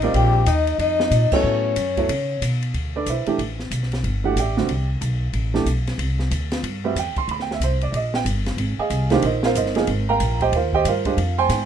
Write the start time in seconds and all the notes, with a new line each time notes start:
Already playing: A1 D#4 D#5
0.02 G3 C4 F4 A#4 D5, ride
0.14 A#1 G4 G5, ride
0.46 D#2 D#4 D#5, hi-hat pedal, ride
0.67 ride
0.79 F2 D#4 D#5, ride
1.00 snare
1.11 A#2, hi-hat pedal, ride
1.32 F#3 B3 C#4 E4 A4 C#5, muted upright bass stroke, kick, crash
1.44 A2
1.76 F#2, hi-hat pedal, ride
1.97 F#3 B3 E4 A4 C#5, kick, ride
2.09 C#3, ride
2.42 B2, hi-hat pedal, ride
2.62 ride
2.74 D2, ride
2.96 D4 A4 B4 D5
3.06 B1 E4 B4 C5 E5, hi-hat pedal, ride
3.26 E3 A3 D4 G4, muted upright bass stroke, ride
3.38 A1, ride
3.59 snare
3.71 B1, hi-hat pedal, ride
3.83 snare
3.92 snare, ride
4.03 G1, ride
4.24 E3 A3 D4 F#4 G4 F#5
4.36 A1, hi-hat pedal, ride
4.40 G4 D5 E5 G5
4.57 D3 G3 C4 F#4, snare
4.68 C2, ride
5.01 B1, hi-hat pedal, ride
5.33 A1, ride
5.54 E3 A3 D4 G4, snare
5.65 B1, hi-hat pedal, ride
5.87 snare, ride
5.98 C2, ride
6.19 snare
6.31 D2, hi-hat pedal, ride
6.51 snare, ride
6.63 G2, ride
6.84 G3 C4 F#4 B4 E5
6.95 E2 G5, hi-hat pedal, ride
7.16 C6, muted upright bass stroke, kick, ride
7.28 D2 B5, ride
7.40 G5, snare
7.51 E5, snare
7.59 C2, hi-hat pedal, ride
7.64 C5
7.81 D5, ride
7.92 A#1 D5, ride
7.96 D#5
8.14 G5, snare
8.25 G1, hi-hat pedal, ride
8.46 snare, ride
8.57 G#1, ride
8.78 G#4 D#5 F5 G#5, muted upright bass stroke
8.90 C2, hi-hat pedal, ride
9.10 D#3 G#3 D4 F4 G4 A#4 C5 F5, snare, ride
9.22 A#1 D#4 A#4 C5 D#5, ride
9.43 F4 A#4 C5 F5, snare
9.55 G1 D#4 A#4 C5 D#5, hi-hat pedal, ride
9.66 snare
9.75 F3 A#3 D#4 G#4, snare, ride
9.87 G#1, ride
10.09 A#4 F5 G5 A#5
10.20 A#1, hi-hat pedal, ride
10.40 G4 C5 D#5 G5, kick, ride
10.52 D#2 F4 A#4 F5, ride
10.56 C5
10.73 G4 C5 D#5 G5, kick
10.85 G2 F5, hi-hat pedal, ride
10.89 F4 A#4 C5
11.05 G#3 D4 G4 C5, kick, ride
11.17 F2, ride
11.38 C5 G5 G#5 C6
11.49 G#2, snare, hi-hat pedal, ride